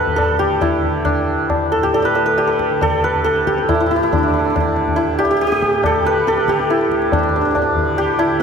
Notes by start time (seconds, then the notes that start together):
Already playing: D2 A2 D3 D4 E4 G4 A4 B4
0.07 tabla ge
0.16 A4, tabla na, tabla ge
0.31 D3
0.39 G4, tabla ge
0.61 E4, tabla na, tabla ge
0.80 D3, tabla ge
1.05 D4, tabla tin, tabla ge
1.27 D2
1.50 tabla na, tabla ge
1.72 A4, tabla te
1.77 A2
1.83 G4, tabla ge
1.94 A4, tabla tin
2.02 B4 D5
2.15 A4, tabla na
2.24 D3 B4
2.38 G4, tabla na
2.47 A4
2.59 tabla ke
2.69 D3
2.81 A4, tabla na, tabla ge
3.04 B4, tabla te
3.15 D2, tabla ge
3.24 A4, tabla te
3.36 tabla te
3.47 G4, tabla ke
3.58 tabla te
3.63 A2
3.69 E4, tabla na, tabla ge
3.75 E4
3.80 E4
3.86 E4
3.91 E4, tabla te
3.96 E4
4.03 E4
4.11 D3 D4, tabla tin, tabla ge
4.18 D4
4.23 D4
4.28 D4
4.34 D4
4.39 D4
4.45 D4
4.50 D4
4.56 D3 D4, tabla na, tabla ge
4.60 D4
4.76 tabla te
4.88 tabla ge
4.96 E4, tabla tin
5.03 D2
5.19 G4, tabla na
5.25 G4
5.31 G4
5.37 G4
5.41 G4, tabla te
5.47 A2 G4
5.52 G4, tabla te
5.62 tabla ke
5.73 tabla te
5.84 A4, tabla na, tabla ge
5.96 D3
6.05 B4, tabla te
6.27 A4, tabla te
6.38 D3, tabla te
6.48 G4, tabla ke
6.59 tabla te
6.70 E4, tabla te
6.81 tabla te
6.88 D2, tabla ke
7.02 tabla te
7.12 D4, tabla tin, tabla ge
7.19 D4
7.23 D4
7.29 D4
7.33 A2 D4
7.41 D4
7.45 D4
7.51 D4
7.55 D4, tabla na, tabla ge
7.62 D4
7.76 D3, tabla ge
7.97 G4, tabla tin
8.19 E4, tabla na
8.25 D3
8.40 tabla te